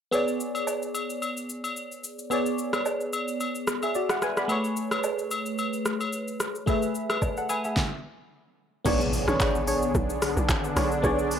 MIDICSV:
0, 0, Header, 1, 7, 480
1, 0, Start_track
1, 0, Tempo, 545455
1, 114, Time_signature, 4, 2, 24, 8
1, 10027, End_track
2, 0, Start_track
2, 0, Title_t, "FM electric piano"
2, 0, Program_c, 0, 5
2, 100, Note_on_c, 0, 59, 75
2, 110, Note_on_c, 0, 68, 68
2, 122, Note_on_c, 0, 73, 69
2, 134, Note_on_c, 0, 74, 78
2, 263, Control_c, 0, 64, 127
2, 1992, Note_off_c, 0, 59, 0
2, 1997, Note_off_c, 0, 68, 0
2, 2003, Note_off_c, 0, 73, 0
2, 2009, Note_off_c, 0, 74, 0
2, 2025, Note_on_c, 0, 59, 72
2, 2037, Note_on_c, 0, 68, 65
2, 2048, Note_on_c, 0, 73, 64
2, 2060, Note_on_c, 0, 74, 78
2, 3212, Note_off_c, 0, 68, 0
2, 3217, Note_off_c, 0, 73, 0
2, 3223, Note_off_c, 0, 74, 0
2, 3372, Note_on_c, 0, 76, 61
2, 3377, Note_on_c, 0, 68, 54
2, 3472, Note_off_c, 0, 76, 0
2, 3475, Note_off_c, 0, 68, 0
2, 3479, Note_on_c, 0, 74, 64
2, 3485, Note_on_c, 0, 66, 55
2, 3602, Note_off_c, 0, 74, 0
2, 3605, Note_off_c, 0, 66, 0
2, 3612, Note_on_c, 0, 78, 71
2, 3712, Note_off_c, 0, 78, 0
2, 3723, Note_on_c, 0, 80, 67
2, 3727, Note_on_c, 0, 71, 57
2, 3844, Note_off_c, 0, 80, 0
2, 3846, Note_off_c, 0, 71, 0
2, 3854, Note_on_c, 0, 83, 60
2, 3859, Note_on_c, 0, 74, 52
2, 3914, Note_off_c, 0, 59, 0
2, 3942, Note_on_c, 0, 57, 72
2, 3952, Note_on_c, 0, 68, 67
2, 3963, Note_on_c, 0, 71, 65
2, 3967, Control_c, 0, 64, 0
2, 3975, Note_on_c, 0, 73, 79
2, 4078, Note_off_c, 0, 83, 0
2, 4081, Note_off_c, 0, 74, 0
2, 4119, Control_c, 0, 64, 127
2, 5833, Note_off_c, 0, 57, 0
2, 5838, Note_off_c, 0, 68, 0
2, 5844, Note_off_c, 0, 71, 0
2, 5849, Note_off_c, 0, 73, 0
2, 5862, Note_on_c, 0, 57, 77
2, 5874, Note_on_c, 0, 68, 71
2, 5886, Note_on_c, 0, 71, 68
2, 5895, Note_on_c, 0, 76, 80
2, 6344, Note_off_c, 0, 68, 0
2, 6351, Note_off_c, 0, 71, 0
2, 6355, Note_off_c, 0, 76, 0
2, 6491, Note_on_c, 0, 78, 65
2, 6497, Note_on_c, 0, 69, 52
2, 6591, Note_off_c, 0, 78, 0
2, 6595, Note_off_c, 0, 69, 0
2, 6598, Note_on_c, 0, 80, 74
2, 6604, Note_on_c, 0, 71, 61
2, 6722, Note_off_c, 0, 80, 0
2, 6725, Note_off_c, 0, 71, 0
2, 6732, Note_on_c, 0, 76, 66
2, 6738, Note_on_c, 0, 68, 54
2, 6809, Note_off_c, 0, 57, 0
2, 6844, Control_c, 0, 64, 0
2, 6958, Note_off_c, 0, 76, 0
2, 6960, Note_off_c, 0, 68, 0
2, 7784, Note_on_c, 0, 59, 75
2, 7795, Note_on_c, 0, 68, 75
2, 7805, Note_on_c, 0, 73, 71
2, 7817, Note_on_c, 0, 74, 87
2, 7938, Control_c, 0, 64, 127
2, 9674, Note_off_c, 0, 59, 0
2, 9679, Note_off_c, 0, 68, 0
2, 9684, Note_off_c, 0, 73, 0
2, 9690, Note_off_c, 0, 74, 0
2, 9700, Note_on_c, 0, 59, 77
2, 9711, Note_on_c, 0, 68, 72
2, 9724, Note_on_c, 0, 73, 73
2, 9735, Note_on_c, 0, 74, 87
2, 10027, Note_off_c, 0, 59, 0
2, 10027, Note_off_c, 0, 68, 0
2, 10027, Note_off_c, 0, 73, 0
2, 10027, Note_off_c, 0, 74, 0
2, 10027, End_track
3, 0, Start_track
3, 0, Title_t, "Synth stab"
3, 0, Program_c, 1, 62
3, 7792, Note_on_c, 1, 62, 96
3, 7794, Note_on_c, 1, 68, 86
3, 7797, Note_on_c, 1, 73, 105
3, 7925, Note_off_c, 1, 62, 0
3, 7927, Note_off_c, 1, 68, 0
3, 7928, Note_off_c, 1, 73, 0
3, 8163, Note_on_c, 1, 62, 77
3, 8166, Note_on_c, 1, 68, 70
3, 8168, Note_on_c, 1, 73, 86
3, 8487, Note_off_c, 1, 62, 0
3, 8488, Note_off_c, 1, 68, 0
3, 8489, Note_off_c, 1, 73, 0
3, 8512, Note_on_c, 1, 62, 82
3, 8514, Note_on_c, 1, 68, 73
3, 8517, Note_on_c, 1, 73, 90
3, 8736, Note_off_c, 1, 62, 0
3, 8737, Note_off_c, 1, 68, 0
3, 8738, Note_off_c, 1, 73, 0
3, 9473, Note_on_c, 1, 62, 76
3, 9475, Note_on_c, 1, 68, 71
3, 9478, Note_on_c, 1, 73, 86
3, 9606, Note_off_c, 1, 62, 0
3, 9607, Note_off_c, 1, 68, 0
3, 9609, Note_off_c, 1, 73, 0
3, 9712, Note_on_c, 1, 62, 98
3, 9715, Note_on_c, 1, 68, 91
3, 9718, Note_on_c, 1, 73, 107
3, 9846, Note_off_c, 1, 62, 0
3, 9847, Note_off_c, 1, 68, 0
3, 9848, Note_off_c, 1, 73, 0
3, 10027, End_track
4, 0, Start_track
4, 0, Title_t, "Analog synth pad"
4, 0, Program_c, 2, 89
4, 7795, Note_on_c, 2, 59, 72
4, 7795, Note_on_c, 2, 62, 90
4, 7797, Note_on_c, 2, 50, 80
4, 7798, Note_on_c, 2, 68, 75
4, 10027, Note_off_c, 2, 50, 0
4, 10027, Note_off_c, 2, 59, 0
4, 10027, Note_off_c, 2, 62, 0
4, 10027, Note_off_c, 2, 68, 0
4, 10027, End_track
5, 0, Start_track
5, 0, Title_t, "Log drum bass"
5, 0, Program_c, 3, 39
5, 7793, Note_on_c, 3, 35, 116
5, 8148, Note_off_c, 3, 35, 0
5, 8165, Note_on_c, 3, 32, 99
5, 8513, Note_on_c, 3, 35, 97
5, 8526, Note_off_c, 3, 32, 0
5, 8742, Note_off_c, 3, 35, 0
5, 8754, Note_on_c, 3, 35, 108
5, 9109, Note_off_c, 3, 35, 0
5, 9124, Note_on_c, 3, 35, 98
5, 9228, Note_off_c, 3, 35, 0
5, 9232, Note_on_c, 3, 32, 94
5, 9462, Note_off_c, 3, 32, 0
5, 9473, Note_on_c, 3, 35, 93
5, 9702, Note_off_c, 3, 35, 0
5, 9713, Note_on_c, 3, 35, 110
5, 10027, Note_off_c, 3, 35, 0
5, 10027, End_track
6, 0, Start_track
6, 0, Title_t, "Impact"
6, 0, Program_c, 4, 103
6, 7794, Note_on_c, 4, 60, 88
6, 9714, Note_off_c, 4, 60, 0
6, 10027, End_track
7, 0, Start_track
7, 0, Title_t, "Drums"
7, 109, Note_on_c, 9, 67, 74
7, 113, Note_on_c, 9, 82, 67
7, 197, Note_off_c, 9, 67, 0
7, 201, Note_off_c, 9, 82, 0
7, 246, Note_on_c, 9, 82, 54
7, 334, Note_off_c, 9, 82, 0
7, 354, Note_on_c, 9, 82, 83
7, 442, Note_off_c, 9, 82, 0
7, 483, Note_on_c, 9, 67, 65
7, 488, Note_on_c, 9, 82, 50
7, 571, Note_off_c, 9, 67, 0
7, 576, Note_off_c, 9, 82, 0
7, 591, Note_on_c, 9, 77, 79
7, 594, Note_on_c, 9, 82, 79
7, 679, Note_off_c, 9, 77, 0
7, 682, Note_off_c, 9, 82, 0
7, 726, Note_on_c, 9, 82, 46
7, 814, Note_off_c, 9, 82, 0
7, 832, Note_on_c, 9, 67, 72
7, 834, Note_on_c, 9, 82, 92
7, 920, Note_off_c, 9, 67, 0
7, 922, Note_off_c, 9, 82, 0
7, 967, Note_on_c, 9, 82, 54
7, 1055, Note_off_c, 9, 82, 0
7, 1074, Note_on_c, 9, 67, 68
7, 1076, Note_on_c, 9, 82, 70
7, 1162, Note_off_c, 9, 67, 0
7, 1164, Note_off_c, 9, 82, 0
7, 1207, Note_on_c, 9, 82, 56
7, 1295, Note_off_c, 9, 82, 0
7, 1314, Note_on_c, 9, 82, 87
7, 1402, Note_off_c, 9, 82, 0
7, 1443, Note_on_c, 9, 67, 67
7, 1447, Note_on_c, 9, 82, 53
7, 1531, Note_off_c, 9, 67, 0
7, 1535, Note_off_c, 9, 82, 0
7, 1553, Note_on_c, 9, 82, 71
7, 1641, Note_off_c, 9, 82, 0
7, 1687, Note_on_c, 9, 82, 50
7, 1775, Note_off_c, 9, 82, 0
7, 1794, Note_on_c, 9, 82, 81
7, 1882, Note_off_c, 9, 82, 0
7, 1925, Note_on_c, 9, 82, 49
7, 2013, Note_off_c, 9, 82, 0
7, 2031, Note_on_c, 9, 67, 72
7, 2035, Note_on_c, 9, 82, 68
7, 2119, Note_off_c, 9, 67, 0
7, 2123, Note_off_c, 9, 82, 0
7, 2165, Note_on_c, 9, 82, 52
7, 2253, Note_off_c, 9, 82, 0
7, 2274, Note_on_c, 9, 82, 80
7, 2362, Note_off_c, 9, 82, 0
7, 2404, Note_on_c, 9, 37, 88
7, 2405, Note_on_c, 9, 67, 70
7, 2406, Note_on_c, 9, 82, 51
7, 2492, Note_off_c, 9, 37, 0
7, 2493, Note_off_c, 9, 67, 0
7, 2494, Note_off_c, 9, 82, 0
7, 2513, Note_on_c, 9, 82, 74
7, 2514, Note_on_c, 9, 77, 81
7, 2601, Note_off_c, 9, 82, 0
7, 2602, Note_off_c, 9, 77, 0
7, 2645, Note_on_c, 9, 82, 48
7, 2733, Note_off_c, 9, 82, 0
7, 2754, Note_on_c, 9, 82, 100
7, 2756, Note_on_c, 9, 67, 72
7, 2842, Note_off_c, 9, 82, 0
7, 2844, Note_off_c, 9, 67, 0
7, 2887, Note_on_c, 9, 82, 52
7, 2975, Note_off_c, 9, 82, 0
7, 2996, Note_on_c, 9, 82, 71
7, 2997, Note_on_c, 9, 67, 67
7, 3084, Note_off_c, 9, 82, 0
7, 3085, Note_off_c, 9, 67, 0
7, 3125, Note_on_c, 9, 82, 59
7, 3213, Note_off_c, 9, 82, 0
7, 3232, Note_on_c, 9, 82, 89
7, 3233, Note_on_c, 9, 37, 96
7, 3320, Note_off_c, 9, 82, 0
7, 3321, Note_off_c, 9, 37, 0
7, 3366, Note_on_c, 9, 82, 52
7, 3367, Note_on_c, 9, 67, 71
7, 3454, Note_off_c, 9, 82, 0
7, 3455, Note_off_c, 9, 67, 0
7, 3473, Note_on_c, 9, 82, 74
7, 3561, Note_off_c, 9, 82, 0
7, 3603, Note_on_c, 9, 37, 97
7, 3606, Note_on_c, 9, 82, 51
7, 3691, Note_off_c, 9, 37, 0
7, 3694, Note_off_c, 9, 82, 0
7, 3714, Note_on_c, 9, 37, 90
7, 3714, Note_on_c, 9, 82, 85
7, 3802, Note_off_c, 9, 37, 0
7, 3802, Note_off_c, 9, 82, 0
7, 3846, Note_on_c, 9, 82, 51
7, 3847, Note_on_c, 9, 37, 90
7, 3934, Note_off_c, 9, 82, 0
7, 3935, Note_off_c, 9, 37, 0
7, 3953, Note_on_c, 9, 67, 73
7, 3953, Note_on_c, 9, 82, 69
7, 4041, Note_off_c, 9, 67, 0
7, 4041, Note_off_c, 9, 82, 0
7, 4085, Note_on_c, 9, 82, 53
7, 4173, Note_off_c, 9, 82, 0
7, 4194, Note_on_c, 9, 82, 80
7, 4282, Note_off_c, 9, 82, 0
7, 4324, Note_on_c, 9, 37, 85
7, 4325, Note_on_c, 9, 67, 69
7, 4326, Note_on_c, 9, 82, 51
7, 4412, Note_off_c, 9, 37, 0
7, 4413, Note_off_c, 9, 67, 0
7, 4414, Note_off_c, 9, 82, 0
7, 4432, Note_on_c, 9, 82, 81
7, 4433, Note_on_c, 9, 77, 82
7, 4520, Note_off_c, 9, 82, 0
7, 4521, Note_off_c, 9, 77, 0
7, 4565, Note_on_c, 9, 82, 48
7, 4653, Note_off_c, 9, 82, 0
7, 4672, Note_on_c, 9, 82, 100
7, 4675, Note_on_c, 9, 67, 74
7, 4760, Note_off_c, 9, 82, 0
7, 4763, Note_off_c, 9, 67, 0
7, 4803, Note_on_c, 9, 82, 52
7, 4891, Note_off_c, 9, 82, 0
7, 4914, Note_on_c, 9, 82, 69
7, 4917, Note_on_c, 9, 67, 69
7, 5002, Note_off_c, 9, 82, 0
7, 5005, Note_off_c, 9, 67, 0
7, 5044, Note_on_c, 9, 82, 55
7, 5132, Note_off_c, 9, 82, 0
7, 5152, Note_on_c, 9, 82, 90
7, 5153, Note_on_c, 9, 37, 92
7, 5240, Note_off_c, 9, 82, 0
7, 5241, Note_off_c, 9, 37, 0
7, 5285, Note_on_c, 9, 67, 70
7, 5285, Note_on_c, 9, 82, 52
7, 5373, Note_off_c, 9, 67, 0
7, 5373, Note_off_c, 9, 82, 0
7, 5392, Note_on_c, 9, 82, 75
7, 5480, Note_off_c, 9, 82, 0
7, 5525, Note_on_c, 9, 82, 48
7, 5613, Note_off_c, 9, 82, 0
7, 5633, Note_on_c, 9, 37, 91
7, 5633, Note_on_c, 9, 82, 83
7, 5721, Note_off_c, 9, 37, 0
7, 5721, Note_off_c, 9, 82, 0
7, 5766, Note_on_c, 9, 82, 49
7, 5854, Note_off_c, 9, 82, 0
7, 5872, Note_on_c, 9, 67, 71
7, 5874, Note_on_c, 9, 36, 111
7, 5874, Note_on_c, 9, 82, 68
7, 5960, Note_off_c, 9, 67, 0
7, 5962, Note_off_c, 9, 36, 0
7, 5962, Note_off_c, 9, 82, 0
7, 6006, Note_on_c, 9, 82, 56
7, 6094, Note_off_c, 9, 82, 0
7, 6115, Note_on_c, 9, 82, 83
7, 6203, Note_off_c, 9, 82, 0
7, 6245, Note_on_c, 9, 37, 84
7, 6245, Note_on_c, 9, 67, 72
7, 6247, Note_on_c, 9, 82, 52
7, 6333, Note_off_c, 9, 37, 0
7, 6333, Note_off_c, 9, 67, 0
7, 6335, Note_off_c, 9, 82, 0
7, 6353, Note_on_c, 9, 77, 80
7, 6354, Note_on_c, 9, 36, 93
7, 6354, Note_on_c, 9, 82, 76
7, 6441, Note_off_c, 9, 77, 0
7, 6442, Note_off_c, 9, 36, 0
7, 6442, Note_off_c, 9, 82, 0
7, 6486, Note_on_c, 9, 82, 49
7, 6574, Note_off_c, 9, 82, 0
7, 6594, Note_on_c, 9, 67, 75
7, 6594, Note_on_c, 9, 82, 97
7, 6682, Note_off_c, 9, 67, 0
7, 6682, Note_off_c, 9, 82, 0
7, 6726, Note_on_c, 9, 82, 52
7, 6814, Note_off_c, 9, 82, 0
7, 6834, Note_on_c, 9, 36, 109
7, 6835, Note_on_c, 9, 38, 87
7, 6922, Note_off_c, 9, 36, 0
7, 6923, Note_off_c, 9, 38, 0
7, 7794, Note_on_c, 9, 36, 113
7, 7794, Note_on_c, 9, 49, 98
7, 7794, Note_on_c, 9, 82, 73
7, 7882, Note_off_c, 9, 36, 0
7, 7882, Note_off_c, 9, 49, 0
7, 7882, Note_off_c, 9, 82, 0
7, 7926, Note_on_c, 9, 82, 56
7, 8014, Note_off_c, 9, 82, 0
7, 8035, Note_on_c, 9, 46, 51
7, 8035, Note_on_c, 9, 82, 85
7, 8123, Note_off_c, 9, 46, 0
7, 8123, Note_off_c, 9, 82, 0
7, 8164, Note_on_c, 9, 37, 94
7, 8166, Note_on_c, 9, 82, 52
7, 8252, Note_off_c, 9, 37, 0
7, 8254, Note_off_c, 9, 82, 0
7, 8273, Note_on_c, 9, 36, 99
7, 8273, Note_on_c, 9, 82, 83
7, 8278, Note_on_c, 9, 39, 78
7, 8361, Note_off_c, 9, 36, 0
7, 8361, Note_off_c, 9, 82, 0
7, 8366, Note_off_c, 9, 39, 0
7, 8406, Note_on_c, 9, 82, 50
7, 8494, Note_off_c, 9, 82, 0
7, 8514, Note_on_c, 9, 46, 63
7, 8514, Note_on_c, 9, 82, 104
7, 8602, Note_off_c, 9, 46, 0
7, 8602, Note_off_c, 9, 82, 0
7, 8645, Note_on_c, 9, 82, 55
7, 8733, Note_off_c, 9, 82, 0
7, 8754, Note_on_c, 9, 36, 113
7, 8755, Note_on_c, 9, 82, 76
7, 8842, Note_off_c, 9, 36, 0
7, 8843, Note_off_c, 9, 82, 0
7, 8886, Note_on_c, 9, 82, 62
7, 8974, Note_off_c, 9, 82, 0
7, 8994, Note_on_c, 9, 46, 58
7, 8994, Note_on_c, 9, 82, 92
7, 8995, Note_on_c, 9, 37, 97
7, 9082, Note_off_c, 9, 46, 0
7, 9082, Note_off_c, 9, 82, 0
7, 9083, Note_off_c, 9, 37, 0
7, 9127, Note_on_c, 9, 82, 57
7, 9215, Note_off_c, 9, 82, 0
7, 9233, Note_on_c, 9, 36, 100
7, 9234, Note_on_c, 9, 82, 79
7, 9236, Note_on_c, 9, 39, 98
7, 9321, Note_off_c, 9, 36, 0
7, 9322, Note_off_c, 9, 82, 0
7, 9324, Note_off_c, 9, 39, 0
7, 9365, Note_on_c, 9, 82, 55
7, 9453, Note_off_c, 9, 82, 0
7, 9473, Note_on_c, 9, 46, 55
7, 9473, Note_on_c, 9, 82, 90
7, 9474, Note_on_c, 9, 37, 100
7, 9561, Note_off_c, 9, 46, 0
7, 9561, Note_off_c, 9, 82, 0
7, 9562, Note_off_c, 9, 37, 0
7, 9605, Note_on_c, 9, 82, 57
7, 9693, Note_off_c, 9, 82, 0
7, 9713, Note_on_c, 9, 36, 116
7, 9714, Note_on_c, 9, 82, 72
7, 9801, Note_off_c, 9, 36, 0
7, 9802, Note_off_c, 9, 82, 0
7, 9845, Note_on_c, 9, 82, 60
7, 9933, Note_off_c, 9, 82, 0
7, 9955, Note_on_c, 9, 46, 49
7, 9955, Note_on_c, 9, 82, 90
7, 10027, Note_off_c, 9, 46, 0
7, 10027, Note_off_c, 9, 82, 0
7, 10027, End_track
0, 0, End_of_file